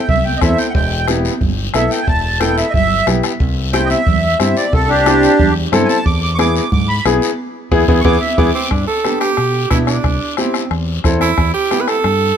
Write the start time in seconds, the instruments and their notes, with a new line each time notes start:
0.08 fingered electric bass C2, accordion E5, bombo low, high conga, low conga, long guiro
0.25 accordion G5, high conga
0.37 upright piano C4, accordion D#5
0.41 fingered electric bass E2, upright piano E4 A4, accordion E5, bombo low, bombo rim, high conga, short guiro
0.58 accordion G5, short guiro
0.70 accordion F#5
0.75 fingered electric bass E1, accordion G5, bombo low, high conga, long guiro
1.08 upright piano B3 E4 G4, bombo rim, high conga, short guiro
1.25 high conga, short guiro
1.41 fingered electric bass G1, bombo low, high conga, low conga, long guiro
1.74 fingered electric bass B1, upright piano B3 E4 A4, accordion E5, bombo rim, high conga, short guiro
1.91 accordion G5, short guiro
2.02 accordion G#5
2.07 fingered electric bass E1, accordion A5, bombo low, high conga, long guiro
2.40 upright piano B3 E4 A4, accordion G5, bombo rim, high conga, short guiro
2.57 accordion E5, short guiro
2.70 fingered electric bass G1, accordion D#5
2.74 accordion E5, bombo low, high conga, low conga, long guiro
3.07 fingered electric bass B1, upright piano B3 E4 G4, bombo rim, high conga, low conga, short guiro
3.23 bombo rim, short guiro
3.40 fingered electric bass C2, bombo low, high conga, long guiro
3.73 upright piano C4 E4 G4, accordion G5, bombo rim, high conga, short guiro
3.86 accordion D#5
3.90 accordion E5, high conga, short guiro
4.06 fingered electric bass E2, bombo low, high conga, low conga, long guiro
4.39 fingered electric bass G2, upright piano C4 E4 G4, accordion E5, bombo rim, high conga, short guiro
4.57 accordion D5, short guiro
4.73 fingered electric bass C2, accordion A4, bombo low, high conga, long guiro
4.89 accordion D4 G4
5.06 upright piano C4 E4 G4, bombo rim, high conga, short guiro
5.23 short guiro
5.39 fingered electric bass E2, bombo low, high conga, low conga, long guiro
5.72 fingered electric bass G2, upright piano C4 E4 A4, bombo rim, high conga, low conga, short guiro
5.85 accordion G#5
5.89 accordion A5, short guiro
6.06 fingered electric bass E2, accordion D6, bombo low, high conga, long guiro
6.23 accordion D6
6.35 upright piano B3, accordion C#6
6.39 upright piano E4 G#4, accordion D6, bombo rim, high conga, short guiro
6.56 accordion D6, short guiro
6.72 fingered electric bass G#2, accordion D6, bombo low, high conga, low conga, long guiro
6.88 accordion B5
7.05 fingered electric bass B1, upright piano B3 E4 G#4, bombo rim, high conga, short guiro
7.22 short guiro
7.71 fingered electric bass E2, upright piano B3 E4 G#4, bombo low, high conga, long guiro
7.88 fingered electric bass E2, upright piano B3 E4 G#4, bombo low, high conga, long guiro
8.01 fingered electric bass E2, accordion C#6
8.05 upright piano B3 E4 G#4, accordion D6, bombo low, high conga, long guiro
8.21 accordion E5
8.38 fingered electric bass E2, upright piano B3 E4 G#4, accordion D6, bombo low, high conga, long guiro
8.54 tenor saxophone C4, accordion D6
8.71 fingered electric bass G2, tenor saxophone D4, bombo low, bombo rim, high conga
8.87 tenor saxophone A4
9.04 upright piano B3 D4 G4, bombo rim, high conga, short guiro
9.20 tenor saxophone G4, bombo rim, short guiro
9.37 fingered electric bass B2, bombo rim, high conga, long guiro
9.70 fingered electric bass B2, upright piano B3 D4 E4, tenor saxophone E4, bombo low, bombo rim, high conga, short guiro
9.86 tenor saxophone D4, bombo rim, short guiro
10.04 fingered electric bass C2, bombo low, bombo rim, long guiro
10.37 upright piano C4 E4 G4, tenor saxophone C4, bombo rim, high conga, short guiro
10.54 bombo rim, short guiro
10.71 fingered electric bass E2, bombo rim, high conga, long guiro
11.04 fingered electric bass E2, upright piano C4 E4 A4, bombo low, bombo rim, high conga, short guiro
11.21 tenor saxophone E4, bombo rim, short guiro
11.38 fingered electric bass E2, bombo low, bombo rim, high conga, long guiro
11.54 tenor saxophone G4
11.71 upright piano B3 E4 G4, bombo rim, high conga, short guiro
11.81 tenor saxophone B4
11.88 tenor saxophone A4, bombo rim, short guiro
12.04 fingered electric bass G2, bombo rim, high conga, long guiro